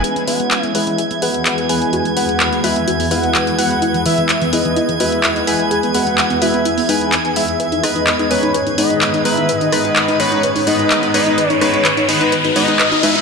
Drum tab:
HH |xxoxxxoxxxoxxxox|xxoxxxoxxooxxxox|xxoxxxoxxxoxxxox|xxoxxxoxxooxxxox|
CP |----x-------x---|----x-------x---|----x-------x---|----x-------x---|
SD |----------------|----------------|----------------|----------------|

HH |xxoxxxoxxxoxxxox|xxoxxxoxxooxxxox|xxoxxxoxxxoxxxox|
CP |----x-------x---|----x-------x---|----x-------x---|
SD |--r-------------|--r-------------|--r-------------|